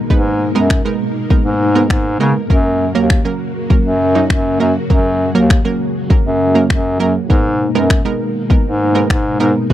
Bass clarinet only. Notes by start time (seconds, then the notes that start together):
0.10 G#2
0.55 F#2
1.45 G#2
1.90 G#2
2.20 C#3
2.50 F#2
2.95 D#2
3.85 F#2
4.30 F#2
4.60 F#2
4.90 F#2
5.35 D#2
6.25 F#2
6.70 F#2
7.00 F#2
7.30 G#2
7.75 F#2
8.65 G#2
9.10 G#2
9.40 G#2
9.70 G#2